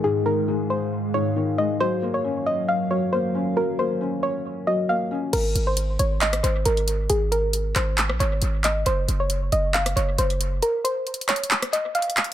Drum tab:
CC |------------------------------------------------|------------------------------------------------|------------------------------------------------|x-----------------------------------------------|
HH |------------------------------------------------|------------------------------------------------|------------------------------------------------|x-----x-----x-----x-----x--x--x-----x--x--x-----|
CP |------------------------------------------------|------------------------------------------------|------------------------------------------------|------------------------x-----------------------|
SD |------------------------------------------------|------------------------------------------------|------------------------------------------------|---------------------------r--------------------|

CC |------------------------------------------------|------------------------------------------------|------------------------------------------------|
HH |x-----x-----x-----x-----x-----x-----x-----x-----|x-----x-----x-----x-----x--x--x-----x--x--x-----|x-----x-----x-x-x-x-x-x-x--x--x-----x-x-x-x-x---|
CP |------------------x-----x-----------------x-----|------------------------x-----------------------|------------------x-----x-----------------x-----|
SD |---------------------------r--------------------|---------------------------r--------------------|---------------------------r--------------------|